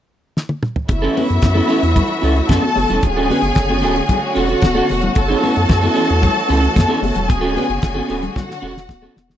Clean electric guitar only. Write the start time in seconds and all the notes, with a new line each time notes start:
0.89 muted clean electric guitar stroke
1.02 C#4 E4 A4
1.15 C#4 E4 B4
1.28 muted clean electric guitar stroke
1.42 muted clean electric guitar stroke
1.54 C#4 E4 A4
1.68 C#4 E4 A4
1.81 muted clean electric guitar stroke
1.95 muted clean electric guitar stroke
2.09 muted clean electric guitar stroke
2.22 C#4 E4 A4
2.36 muted clean electric guitar stroke
2.49 C#4 E4 A4
2.64 muted clean electric guitar stroke
2.76 muted clean electric guitar stroke
2.89 C#4 E4 A4
3.03 muted clean electric guitar stroke
3.17 C#4 F#4 A4
3.29 C#4 F#4 B4
3.43 muted clean electric guitar stroke
3.55 muted clean electric guitar stroke
3.69 C#4 F#4 A4
3.82 C#4 F#4 A4
3.96 muted clean electric guitar stroke
4.08 muted clean electric guitar stroke
4.22 muted clean electric guitar stroke
4.35 C#4 F#4 A4
4.48 C#4 F#4 A4
4.61 muted clean electric guitar stroke
4.75 C#4 F#4 A4
4.89 muted clean electric guitar stroke
5.02 muted clean electric guitar stroke
5.15 muted clean electric guitar stroke
5.28 C#4 E4 A4
5.42 C#4 E4 B4
5.55 muted clean electric guitar stroke
5.68 muted clean electric guitar stroke
5.81 C#4 E4 A4
5.94 C#4 E4 A4
6.08 muted clean electric guitar stroke
6.22 muted clean electric guitar stroke
6.35 muted clean electric guitar stroke
6.49 C#4 E4 A4
6.61 muted clean electric guitar stroke
6.76 muted clean electric guitar stroke
6.88 C#4 E4 A4
7.01 muted clean electric guitar stroke
7.15 muted clean electric guitar stroke
7.28 muted clean electric guitar stroke
7.41 C#4 F#4 A4
7.55 C#4 F#4 B4
7.69 muted clean electric guitar stroke
7.82 muted clean electric guitar stroke
7.94 C#4 F#4 A4
8.08 C#4 F#4 A4
8.22 muted clean electric guitar stroke
8.36 muted clean electric guitar stroke
8.49 muted clean electric guitar stroke
8.62 C#4 F#4 A4
8.76 muted clean electric guitar stroke
8.90 muted clean electric guitar stroke
9.02 C#4 F#4 A4
9.16 muted clean electric guitar stroke
9.28 muted clean electric guitar stroke